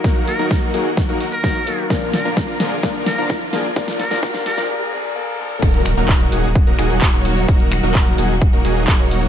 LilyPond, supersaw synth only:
\new Staff \with { instrumentName = "Supersaw synth" } { \time 4/4 \key ees \minor \tempo 4 = 129 <ges bes ees' ges' bes'>8 r16 <ges bes ees' ges' bes'>8. <ges bes ees' ges' aes'>16 r8 <ges bes ees' ges' bes'>16 r8 <ges bes ees' ges' des''>16 r8. | <f bes d' f' bes'>8 r16 <f bes d' f' bes'>8. <f bes d' f' aes'>16 r16 <f bes d' f' bes'>8 r16 <f bes d' f' bes'>8. <f bes d' f' aes'>16 r16 | <f bes d' f' bes'>8 r16 <f bes d' f' bes'>16 <f bes d' f' bes'>8 r16 <f bes d' f' bes'>16 r2 | <ges bes ees' ges' bes'>8 r16 <ges bes ees' ges' bes'>8. <ges bes ees' ges' aes'>16 r8 <ges bes ees' ges' bes'>16 <ges bes ees' ges' aes'>8. <ges bes ees' ges' des''>8. |
<ges bes ees' ges' bes'>8 r16 <ges bes ees' ges' bes'>8. <ges bes ees' ges' aes'>16 r8 <ges bes ees' ges' bes'>16 <ges bes ees' ges' aes'>8. <ges bes ees' ges' des''>8. | }